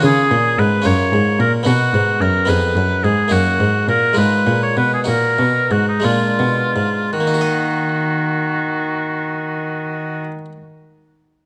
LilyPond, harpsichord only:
<<
  \new Staff \with { instrumentName = "Harpsichord" } { \time 6/8 \key ees \minor \tempo 4. = 65 <des' f' aes'>4. <des' f' bes'>4. | <b dis' fis'>4. <ces' ees' aes'>4. | <bes ees' ges'>4. <aes ees' f'>4. | <ees' ges'>4. <aes d' f'>4. |
<ees bes ees' ges' ees''>2.~ | <ees bes ees' ges' ees''>2. | }
  \new Staff \with { instrumentName = "Harpsichord" } { \clef bass \time 6/8 \key ees \minor des8 bes,8 aes,8 ges,8 aes,8 bes,8 | b,8 aes,8 fis,8 f,8 ges,8 aes,8 | ges,8 aes,8 bes,8 aes,8 bes,8 ces8 | bes,8 ces8 aes,8 bes,8 ces8 aes,8 |
r2. | r2. | }
>>